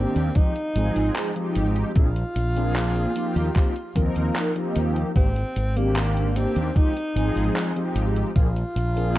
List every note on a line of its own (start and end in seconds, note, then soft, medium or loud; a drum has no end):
0.00 0.31 D#3 medium
0.00 0.31 A#3 medium
0.00 0.31 C4 medium
0.00 0.37 C4 loud
0.00 0.31 D4 medium
0.00 0.31 G4 loud
0.16 0.29 D#2 loud
0.16 closed hi-hat soft
0.35 0.53 F3 medium
0.35 0.53 G#3 medium
0.35 0.53 C4 medium
0.35 1.56 D#4 loud
0.35 0.53 D#4 medium
0.35 0.53 G4 medium
0.35 kick loud
0.35 closed hi-hat medium
0.56 closed hi-hat soft
0.75 0.89 G#1 loud
0.75 1.31 F3 loud
0.75 1.31 G#3 medium
0.75 1.31 C4 medium
0.75 1.32 D#4 medium
0.75 1.32 G#4 loud
0.75 closed hi-hat loud
0.96 1.09 G#1 medium
0.96 closed hi-hat soft
1.16 clap loud
1.16 closed hi-hat medium
1.35 1.91 F3 medium
1.35 1.91 G#3 medium
1.35 1.91 C4 medium
1.35 1.91 D#4 medium
1.35 1.91 G4 loud
1.35 closed hi-hat soft
1.55 1.83 G#1 medium
1.55 closed hi-hat loud
1.76 closed hi-hat soft
1.95 2.22 A#1 loud
1.95 2.06 F3 medium
1.95 2.06 A#3 medium
1.95 2.07 C4 medium
1.95 2.07 D4 medium
1.95 4.32 F4 loud
1.95 2.07 G#4 loud
1.95 kick loud
1.95 closed hi-hat medium
2.16 closed hi-hat soft
2.36 3.05 A#1 medium
2.36 closed hi-hat medium
2.55 3.11 F3 medium
2.55 3.11 A#3 medium
2.55 3.11 C4 medium
2.55 3.11 D4 medium
2.55 3.11 G#4 loud
2.55 closed hi-hat soft
2.76 clap loud
2.76 closed hi-hat medium
2.96 closed hi-hat soft
3.15 3.51 F3 medium
3.15 3.51 A#3 medium
3.15 3.51 C4 medium
3.15 3.51 D#4 medium
3.15 3.51 G4 medium
3.15 closed hi-hat loud
3.36 3.49 D#2 loud
3.36 closed hi-hat soft
3.55 3.73 F3 medium
3.55 3.73 A#3 medium
3.55 3.73 C4 medium
3.55 3.73 D#4 medium
3.55 3.74 G4 medium
3.55 kick loud
3.55 clap medium
3.55 closed hi-hat medium
3.76 closed hi-hat soft
3.95 4.09 D#2 loud
3.95 4.51 F3 loud
3.95 4.51 A#3 medium
3.95 4.51 C4 medium
3.95 4.51 D#4 medium
3.95 4.52 A#4 loud
3.95 kick medium
3.95 closed hi-hat loud
4.16 4.29 D#2 medium
4.16 closed hi-hat soft
4.36 clap loud
4.36 closed hi-hat medium
4.55 5.11 F3 medium
4.55 5.11 A#3 medium
4.55 5.11 C4 medium
4.55 5.11 D#4 medium
4.55 5.11 G4 medium
4.55 closed hi-hat soft
4.76 5.03 D#2 medium
4.76 closed hi-hat loud
4.96 closed hi-hat soft
5.15 5.42 G#1 loud
5.15 5.26 D#3 medium
5.15 5.27 A#3 medium
5.15 5.27 C4 medium
5.15 5.78 C4 loud
5.15 5.27 D4 medium
5.15 5.27 G4 loud
5.15 kick loud
5.15 closed hi-hat medium
5.36 closed hi-hat soft
5.56 6.45 G#1 medium
5.56 closed hi-hat medium
5.75 6.31 D#3 medium
5.75 6.31 A#3 medium
5.75 6.37 A#3 loud
5.75 6.31 C4 medium
5.75 6.31 D4 medium
5.75 6.32 G4 loud
5.75 closed hi-hat soft
5.96 clap loud
5.96 closed hi-hat medium
6.17 closed hi-hat soft
6.35 6.71 D#3 medium
6.35 6.71 A#3 medium
6.35 6.71 C4 medium
6.35 6.77 C4 loud
6.35 6.71 D4 medium
6.35 6.71 G4 loud
6.35 closed hi-hat loud
6.56 6.69 D#2 loud
6.56 closed hi-hat soft
6.75 6.93 F3 medium
6.75 6.93 G#3 medium
6.75 6.93 C4 medium
6.75 7.96 D#4 loud
6.75 6.93 D#4 medium
6.75 6.94 G4 medium
6.75 kick loud
6.75 closed hi-hat medium
6.97 closed hi-hat soft
7.15 7.29 G#1 loud
7.15 7.71 F3 loud
7.15 7.71 G#3 medium
7.15 7.71 C4 medium
7.15 7.71 D#4 medium
7.15 7.72 G#4 loud
7.15 closed hi-hat loud
7.36 7.49 G#1 medium
7.36 closed hi-hat soft
7.56 clap loud
7.56 closed hi-hat medium
7.75 8.31 F3 medium
7.75 8.31 G#3 medium
7.75 8.31 C4 medium
7.75 8.31 D#4 medium
7.75 8.31 G4 medium
7.75 closed hi-hat soft
7.95 8.22 G#1 loud
7.95 closed hi-hat loud
8.16 closed hi-hat soft
8.35 8.63 A#1 loud
8.35 8.46 F3 medium
8.35 8.47 A#3 medium
8.35 8.47 C4 medium
8.35 8.47 D4 medium
8.35 9.19 F4 loud
8.35 8.47 G#4 loud
8.35 kick loud
8.35 closed hi-hat medium
8.56 closed hi-hat soft
8.76 9.19 A#1 medium
8.76 closed hi-hat medium
8.95 9.19 F3 medium
8.95 9.19 A#3 medium
8.95 9.19 C4 medium
8.95 9.19 D4 medium
8.95 9.19 G#4 loud
8.95 closed hi-hat soft